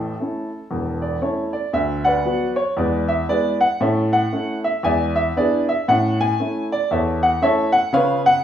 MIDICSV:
0, 0, Header, 1, 2, 480
1, 0, Start_track
1, 0, Key_signature, 3, "major"
1, 0, Tempo, 516796
1, 1619, Time_signature, 4, 2, 24, 8
1, 7837, End_track
2, 0, Start_track
2, 0, Title_t, "Upright piano"
2, 0, Program_c, 0, 0
2, 0, Note_on_c, 0, 33, 49
2, 0, Note_on_c, 0, 45, 63
2, 0, Note_on_c, 0, 69, 59
2, 107, Note_off_c, 0, 33, 0
2, 108, Note_off_c, 0, 45, 0
2, 185, Note_on_c, 0, 57, 31
2, 194, Note_on_c, 0, 64, 36
2, 195, Note_on_c, 0, 61, 31
2, 447, Note_off_c, 0, 57, 0
2, 454, Note_off_c, 0, 61, 0
2, 454, Note_off_c, 0, 64, 0
2, 656, Note_on_c, 0, 28, 47
2, 656, Note_on_c, 0, 40, 55
2, 927, Note_off_c, 0, 69, 0
2, 946, Note_on_c, 0, 74, 57
2, 1065, Note_off_c, 0, 40, 0
2, 1066, Note_off_c, 0, 28, 0
2, 1107, Note_off_c, 0, 74, 0
2, 1127, Note_on_c, 0, 57, 35
2, 1132, Note_on_c, 0, 61, 41
2, 1133, Note_on_c, 0, 64, 45
2, 1135, Note_on_c, 0, 73, 55
2, 1140, Note_on_c, 0, 69, 40
2, 1385, Note_off_c, 0, 73, 0
2, 1394, Note_off_c, 0, 57, 0
2, 1398, Note_off_c, 0, 61, 0
2, 1412, Note_off_c, 0, 69, 0
2, 1414, Note_off_c, 0, 64, 0
2, 1421, Note_on_c, 0, 74, 62
2, 1585, Note_off_c, 0, 74, 0
2, 1607, Note_on_c, 0, 38, 68
2, 1613, Note_on_c, 0, 76, 84
2, 1865, Note_off_c, 0, 76, 0
2, 1899, Note_on_c, 0, 78, 85
2, 1909, Note_on_c, 0, 71, 59
2, 1909, Note_on_c, 0, 74, 60
2, 2021, Note_off_c, 0, 38, 0
2, 2092, Note_on_c, 0, 54, 41
2, 2093, Note_on_c, 0, 59, 45
2, 2100, Note_on_c, 0, 66, 49
2, 2313, Note_off_c, 0, 78, 0
2, 2357, Note_off_c, 0, 71, 0
2, 2357, Note_off_c, 0, 74, 0
2, 2358, Note_off_c, 0, 54, 0
2, 2359, Note_off_c, 0, 59, 0
2, 2364, Note_off_c, 0, 66, 0
2, 2379, Note_on_c, 0, 73, 81
2, 2544, Note_off_c, 0, 73, 0
2, 2570, Note_on_c, 0, 40, 73
2, 2579, Note_on_c, 0, 74, 60
2, 2587, Note_on_c, 0, 68, 55
2, 2587, Note_on_c, 0, 71, 48
2, 2592, Note_on_c, 0, 56, 50
2, 2829, Note_off_c, 0, 74, 0
2, 2853, Note_off_c, 0, 56, 0
2, 2856, Note_off_c, 0, 68, 0
2, 2857, Note_off_c, 0, 71, 0
2, 2865, Note_on_c, 0, 76, 83
2, 2983, Note_off_c, 0, 40, 0
2, 3027, Note_off_c, 0, 76, 0
2, 3053, Note_on_c, 0, 56, 42
2, 3056, Note_on_c, 0, 59, 42
2, 3058, Note_on_c, 0, 74, 92
2, 3063, Note_on_c, 0, 64, 47
2, 3070, Note_on_c, 0, 68, 57
2, 3071, Note_on_c, 0, 71, 61
2, 3308, Note_off_c, 0, 74, 0
2, 3319, Note_off_c, 0, 56, 0
2, 3321, Note_off_c, 0, 59, 0
2, 3326, Note_off_c, 0, 64, 0
2, 3338, Note_off_c, 0, 68, 0
2, 3339, Note_off_c, 0, 71, 0
2, 3349, Note_on_c, 0, 78, 88
2, 3510, Note_off_c, 0, 78, 0
2, 3534, Note_on_c, 0, 45, 82
2, 3538, Note_on_c, 0, 76, 64
2, 3544, Note_on_c, 0, 69, 55
2, 3547, Note_on_c, 0, 73, 50
2, 3549, Note_on_c, 0, 61, 45
2, 3788, Note_off_c, 0, 76, 0
2, 3811, Note_off_c, 0, 61, 0
2, 3815, Note_off_c, 0, 69, 0
2, 3816, Note_off_c, 0, 73, 0
2, 3835, Note_on_c, 0, 78, 86
2, 3945, Note_off_c, 0, 45, 0
2, 4019, Note_on_c, 0, 57, 47
2, 4022, Note_on_c, 0, 61, 41
2, 4027, Note_on_c, 0, 64, 44
2, 4242, Note_off_c, 0, 78, 0
2, 4283, Note_off_c, 0, 57, 0
2, 4286, Note_off_c, 0, 61, 0
2, 4289, Note_off_c, 0, 64, 0
2, 4314, Note_on_c, 0, 76, 84
2, 4472, Note_off_c, 0, 76, 0
2, 4489, Note_on_c, 0, 40, 72
2, 4500, Note_on_c, 0, 80, 89
2, 4508, Note_on_c, 0, 74, 66
2, 4509, Note_on_c, 0, 76, 72
2, 4512, Note_on_c, 0, 56, 40
2, 4749, Note_off_c, 0, 80, 0
2, 4773, Note_off_c, 0, 56, 0
2, 4776, Note_off_c, 0, 76, 0
2, 4777, Note_off_c, 0, 74, 0
2, 4790, Note_on_c, 0, 76, 86
2, 4901, Note_off_c, 0, 40, 0
2, 4950, Note_off_c, 0, 76, 0
2, 4984, Note_on_c, 0, 59, 53
2, 4988, Note_on_c, 0, 62, 50
2, 4988, Note_on_c, 0, 64, 54
2, 4990, Note_on_c, 0, 74, 83
2, 5000, Note_on_c, 0, 68, 68
2, 5002, Note_on_c, 0, 71, 58
2, 5234, Note_off_c, 0, 74, 0
2, 5246, Note_off_c, 0, 59, 0
2, 5249, Note_off_c, 0, 62, 0
2, 5250, Note_off_c, 0, 64, 0
2, 5263, Note_off_c, 0, 68, 0
2, 5264, Note_off_c, 0, 71, 0
2, 5283, Note_on_c, 0, 76, 87
2, 5437, Note_off_c, 0, 76, 0
2, 5464, Note_on_c, 0, 45, 89
2, 5469, Note_on_c, 0, 78, 93
2, 5486, Note_on_c, 0, 61, 52
2, 5713, Note_off_c, 0, 78, 0
2, 5742, Note_off_c, 0, 61, 0
2, 5765, Note_on_c, 0, 80, 99
2, 5869, Note_off_c, 0, 45, 0
2, 5944, Note_on_c, 0, 57, 50
2, 5945, Note_on_c, 0, 61, 40
2, 5948, Note_on_c, 0, 64, 48
2, 6166, Note_off_c, 0, 80, 0
2, 6205, Note_off_c, 0, 57, 0
2, 6206, Note_off_c, 0, 61, 0
2, 6208, Note_off_c, 0, 64, 0
2, 6245, Note_on_c, 0, 74, 94
2, 6398, Note_off_c, 0, 74, 0
2, 6419, Note_on_c, 0, 40, 69
2, 6423, Note_on_c, 0, 76, 68
2, 6435, Note_on_c, 0, 73, 57
2, 6438, Note_on_c, 0, 69, 55
2, 6669, Note_off_c, 0, 76, 0
2, 6698, Note_off_c, 0, 73, 0
2, 6700, Note_off_c, 0, 69, 0
2, 6713, Note_on_c, 0, 78, 85
2, 6825, Note_off_c, 0, 40, 0
2, 6870, Note_off_c, 0, 78, 0
2, 6889, Note_on_c, 0, 57, 54
2, 6893, Note_on_c, 0, 61, 51
2, 6896, Note_on_c, 0, 64, 57
2, 6896, Note_on_c, 0, 76, 94
2, 6906, Note_on_c, 0, 69, 75
2, 6906, Note_on_c, 0, 73, 75
2, 7144, Note_off_c, 0, 76, 0
2, 7154, Note_off_c, 0, 57, 0
2, 7157, Note_off_c, 0, 61, 0
2, 7159, Note_off_c, 0, 64, 0
2, 7173, Note_off_c, 0, 69, 0
2, 7173, Note_off_c, 0, 73, 0
2, 7174, Note_on_c, 0, 78, 95
2, 7338, Note_off_c, 0, 78, 0
2, 7361, Note_on_c, 0, 49, 85
2, 7372, Note_on_c, 0, 77, 105
2, 7375, Note_on_c, 0, 73, 76
2, 7376, Note_on_c, 0, 71, 77
2, 7387, Note_on_c, 0, 65, 55
2, 7621, Note_off_c, 0, 77, 0
2, 7646, Note_off_c, 0, 73, 0
2, 7647, Note_off_c, 0, 65, 0
2, 7647, Note_off_c, 0, 71, 0
2, 7672, Note_on_c, 0, 78, 106
2, 7774, Note_off_c, 0, 49, 0
2, 7837, Note_off_c, 0, 78, 0
2, 7837, End_track
0, 0, End_of_file